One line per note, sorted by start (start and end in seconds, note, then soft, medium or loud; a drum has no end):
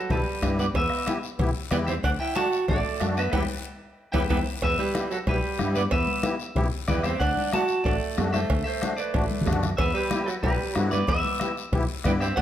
0.00 0.11 A4 medium
0.09 0.23 B1 medium
0.09 0.56 G3 medium
0.09 0.21 B3 medium
0.09 0.21 E4 medium
0.09 0.55 G4 medium
0.09 0.21 A4 medium
0.09 0.56 B4 medium
0.09 bombo low medium
0.09 cowbell medium
0.09 low conga medium
0.09 long guiro medium
0.27 high conga soft
0.42 0.68 G2 medium
0.42 0.65 B3 medium
0.42 0.65 E4 medium
0.42 0.65 G4 medium
0.42 bombo low medium
0.42 bombo rim medium
0.42 cowbell medium
0.42 high conga medium
0.42 short guiro medium
0.59 0.66 B3 medium
0.59 0.64 B4 medium
0.59 0.65 D5 medium
0.59 high conga medium
0.59 short guiro medium
0.74 0.87 E2 loud
0.74 1.21 B3 medium
0.74 1.20 B4 medium
0.74 1.20 E5 medium
0.74 bombo low medium
0.74 cowbell medium
0.74 high conga soft
0.74 long guiro medium
0.90 bombo rim medium
1.06 1.18 B3 medium
1.06 1.18 E4 medium
1.06 1.18 G4 medium
1.06 bombo rim medium
1.06 cowbell medium
1.06 high conga medium
1.06 short guiro medium
1.23 short guiro medium
1.38 1.52 B1 medium
1.38 1.50 B3 medium
1.38 1.50 E4 medium
1.38 1.51 G4 medium
1.38 bombo low medium
1.38 cowbell medium
1.38 low conga medium
1.38 long guiro medium
1.55 high conga soft
1.71 1.97 E2 medium
1.71 1.94 B3 medium
1.71 1.79 B3 medium
1.71 1.94 E4 medium
1.71 1.94 G4 medium
1.71 1.77 B4 medium
1.71 1.76 D5 medium
1.71 bombo rim medium
1.71 cowbell medium
1.71 high conga medium
1.71 low conga medium
1.71 short guiro medium
1.87 1.95 C4 medium
1.87 1.93 C5 medium
1.87 1.92 E5 medium
1.87 high conga medium
1.87 short guiro medium
2.03 2.17 D2 loud
2.03 2.11 D4 medium
2.03 2.10 D5 medium
2.03 2.09 F#5 loud
2.03 bombo low medium
2.03 cowbell loud
2.03 high conga soft
2.03 long guiro medium
2.20 2.35 E4 medium
2.20 2.35 E5 medium
2.20 2.35 G5 loud
2.35 2.47 A3 medium
2.35 2.48 D4 medium
2.35 2.66 F#4 loud
2.35 2.48 F#4 medium
2.35 2.67 F#5 medium
2.35 2.66 A5 loud
2.35 bombo rim medium
2.35 cowbell medium
2.35 high conga medium
2.35 short guiro medium
2.53 short guiro medium
2.68 2.82 A1 medium
2.68 3.13 A3 medium
2.68 2.80 A3 medium
2.68 2.80 D4 medium
2.68 2.80 F#4 medium
2.68 3.14 A4 medium
2.68 3.14 D5 medium
2.68 bombo low medium
2.68 cowbell medium
2.68 low conga medium
2.68 long guiro medium
2.85 high conga soft
3.00 3.27 F#2 medium
3.00 3.23 A3 medium
3.00 3.24 D4 medium
3.00 3.24 F#4 medium
3.00 bombo rim medium
3.00 cowbell medium
3.00 high conga medium
3.00 short guiro medium
3.17 3.31 B3 medium
3.17 3.31 B4 medium
3.17 3.31 E5 medium
3.17 short guiro medium
3.32 3.45 E2 medium
3.32 3.40 B3 loud
3.32 3.43 B3 loud
3.32 3.43 E4 medium
3.32 3.43 G4 loud
3.32 3.43 B4 medium
3.32 3.43 E5 medium
3.32 3.43 G5 medium
3.32 bombo low loud
3.32 high conga loud
3.32 high timbale loud
3.32 long guiro loud
4.12 4.26 E2 medium
4.12 4.22 B3 medium
4.12 4.24 B3 loud
4.12 4.24 E4 medium
4.12 4.24 G4 medium
4.12 4.23 B4 medium
4.12 4.23 E5 medium
4.12 4.23 G5 medium
4.12 bombo low loud
4.12 high conga medium
4.12 high timbale loud
4.12 long guiro medium
4.29 4.42 E2 medium
4.29 4.40 B3 medium
4.29 4.38 B3 medium
4.29 4.40 E4 medium
4.29 4.40 G4 medium
4.29 4.40 B4 medium
4.29 4.40 E5 medium
4.29 4.40 G5 medium
4.29 bombo low medium
4.29 high conga loud
4.29 high timbale loud
4.29 long guiro loud
4.62 4.76 E2 loud
4.62 4.77 B3 medium
4.62 4.78 B4 medium
4.62 4.79 E5 loud
4.62 bombo low medium
4.62 cowbell loud
4.62 high conga soft
4.79 5.09 G3 medium
4.79 5.09 G4 medium
4.79 5.12 B4 medium
4.79 high conga medium
4.94 5.05 B3 medium
4.94 5.06 E4 medium
4.94 5.06 G4 medium
4.94 bombo rim medium
4.94 high conga loud
4.94 short guiro medium
5.10 5.17 F#3 medium
5.10 5.17 F#4 medium
5.10 5.17 A4 medium
5.10 short guiro medium
5.26 5.40 B1 loud
5.26 5.72 G3 medium
5.26 5.38 B3 medium
5.26 5.38 E4 medium
5.26 5.38 G4 medium
5.26 5.73 G4 medium
5.26 5.74 B4 medium
5.26 bombo low medium
5.26 cowbell medium
5.26 high conga soft
5.26 long guiro medium
5.58 5.86 G2 medium
5.58 5.81 B3 medium
5.58 5.81 E4 medium
5.58 5.82 G4 medium
5.58 bombo rim medium
5.58 high conga medium
5.58 short guiro medium
5.75 5.83 B3 medium
5.75 5.80 B4 medium
5.75 5.81 D5 medium
5.75 high conga medium
5.75 short guiro medium
5.91 6.05 E2 loud
5.91 6.37 B3 medium
5.91 6.37 B4 medium
5.91 6.37 E5 medium
5.91 bombo low medium
5.91 cowbell loud
5.91 high conga soft
5.91 long guiro medium
6.07 high conga medium
6.23 6.35 B3 medium
6.23 6.35 E4 medium
6.23 6.35 G4 medium
6.23 bombo rim medium
6.23 high conga loud
6.23 short guiro medium
6.39 short guiro medium
6.56 6.69 B1 loud
6.56 6.67 B3 medium
6.56 6.67 E4 medium
6.56 6.68 G4 medium
6.56 bombo low medium
6.56 cowbell medium
6.56 high conga soft
6.56 low conga medium
6.56 long guiro medium
6.88 7.14 E2 medium
6.88 7.11 B3 medium
6.88 7.04 B3 medium
6.88 7.11 E4 medium
6.88 7.11 G4 medium
6.88 7.04 B4 medium
6.88 7.04 D5 medium
6.88 bombo low medium
6.88 bombo rim medium
6.88 high conga medium
6.88 low conga medium
6.88 short guiro medium
7.03 7.20 C4 medium
7.03 7.20 C5 medium
7.03 7.21 E5 medium
7.03 bombo rim medium
7.03 high conga medium
7.03 short guiro medium
7.20 7.33 D2 loud
7.20 7.51 D4 medium
7.20 7.51 D5 medium
7.20 7.50 F#5 loud
7.20 bombo low medium
7.20 cowbell loud
7.20 high conga soft
7.20 long guiro medium
7.37 high conga medium
7.52 7.64 A3 medium
7.52 7.64 D4 medium
7.52 7.64 F#4 medium
7.52 7.83 F#4 loud
7.52 7.83 F#5 medium
7.52 7.83 A5 loud
7.52 bombo rim medium
7.52 high conga loud
7.52 short guiro medium
7.68 short guiro medium
7.84 7.98 A1 loud
7.84 8.30 A3 medium
7.84 7.96 A3 medium
7.84 7.96 D4 medium
7.84 7.97 F#4 medium
7.84 8.30 A4 medium
7.84 8.30 D5 medium
7.84 bombo low medium
7.84 cowbell medium
7.84 long guiro medium
8.17 8.44 F#2 medium
8.17 8.40 A3 medium
8.17 8.40 D4 medium
8.17 8.40 F#4 medium
8.17 bombo rim medium
8.17 high conga medium
8.17 low timbale medium
8.17 short guiro medium
8.33 8.63 A3 medium
8.33 8.65 C5 medium
8.33 8.63 E5 loud
8.33 bombo rim medium
8.33 high conga medium
8.33 short guiro medium
8.50 8.63 D2 loud
8.50 bombo low medium
8.50 cowbell loud
8.50 high conga soft
8.50 long guiro medium
8.64 8.95 A3 medium
8.64 8.97 C5 medium
8.64 8.95 E5 loud
8.82 8.93 A3 medium
8.82 8.94 D4 medium
8.82 8.94 F#4 medium
8.82 bombo rim medium
8.82 high conga loud
8.82 short guiro medium
8.97 9.58 A3 medium
8.97 9.60 B4 medium
8.97 9.58 D5 medium
8.97 short guiro medium
9.14 9.27 A1 medium
9.14 9.25 A3 medium
9.14 9.26 D4 medium
9.14 9.26 F#4 medium
9.14 bombo low medium
9.14 cowbell medium
9.14 high conga soft
9.14 long guiro medium
9.31 high conga medium
9.41 low conga medium
9.46 9.73 F#2 medium
9.46 9.69 A3 medium
9.46 9.69 D4 medium
9.46 9.69 F#4 medium
9.46 bombo low medium
9.46 bombo rim medium
9.46 low timbale medium
9.46 short guiro medium
9.53 low conga medium
9.63 bombo rim medium
9.63 low conga medium
9.63 short guiro medium
9.77 9.92 E2 loud
9.77 9.93 B3 medium
9.77 9.94 B4 medium
9.77 9.93 E5 medium
9.77 bombo low medium
9.77 cowbell loud
9.77 long guiro medium
9.94 10.21 G3 medium
9.94 10.22 G4 medium
9.94 10.21 B4 medium
10.10 10.22 B3 medium
10.10 10.22 E4 medium
10.10 10.23 G4 medium
10.10 bombo rim medium
10.10 high conga medium
10.10 short guiro medium
10.23 10.34 F#3 medium
10.23 10.26 G3 medium
10.23 10.29 A4 medium
10.23 10.28 B4 medium
10.28 10.34 F#4 medium
10.28 short guiro medium
10.41 10.56 B1 medium
10.41 10.87 G3 medium
10.41 10.55 B3 medium
10.41 10.55 E4 medium
10.41 10.55 G4 medium
10.41 10.88 B4 medium
10.41 bombo low medium
10.41 cowbell medium
10.41 high conga soft
10.41 long guiro medium
10.45 10.90 G4 medium
10.75 11.02 G2 medium
10.75 10.98 B3 medium
10.75 10.99 E4 medium
10.75 10.99 F#4 medium
10.75 bombo rim medium
10.75 high conga medium
10.75 short guiro medium
10.91 11.06 B3 medium
10.91 11.08 B4 medium
10.91 11.08 D5 medium
10.91 high conga medium
10.91 short guiro medium
11.07 11.21 E2 medium
11.07 11.53 B3 medium
11.07 11.55 B4 medium
11.07 11.54 E5 medium
11.07 bombo low medium
11.07 cowbell loud
11.07 high conga soft
11.07 long guiro medium
11.25 high conga medium
11.40 11.52 B3 medium
11.40 11.52 E4 medium
11.40 11.52 G4 medium
11.40 bombo rim medium
11.40 high conga medium
11.40 short guiro medium
11.57 short guiro medium
11.72 11.86 B1 medium
11.72 11.84 B3 medium
11.72 11.84 E4 medium
11.72 11.85 G4 medium
11.72 bombo low medium
11.72 cowbell medium
11.72 high conga soft
11.72 low conga medium
11.72 long guiro medium
12.04 12.31 G2 medium
12.04 12.28 B3 medium
12.04 12.12 B3 medium
12.04 12.28 E4 medium
12.04 12.28 G4 medium
12.04 12.11 B4 medium
12.04 12.11 D5 medium
12.04 bombo low medium
12.04 bombo rim medium
12.04 high conga medium
12.04 low conga medium
12.04 short guiro medium
12.20 12.36 C4 medium
12.20 12.37 C5 medium
12.20 12.38 E5 medium
12.20 bombo rim medium
12.20 short guiro medium
12.36 12.42 D2 loud
12.36 12.42 D4 medium
12.36 12.42 D5 medium
12.36 12.42 F#5 loud
12.36 bombo low medium
12.36 cowbell loud
12.36 high conga soft
12.36 long guiro medium